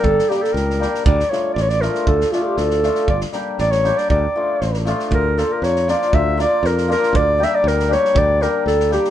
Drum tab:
SD |-ooooooo|-oo-oooo|-oo-oooo|-oo-oooo|
BD |o-------|o-------|o-------|o-------|

SD |----oooo|--o-oooo|--o-oooo|--o-oooo|
BD |o-------|o-------|o-------|o-------|

SD |--o-oooo|
BD |o-------|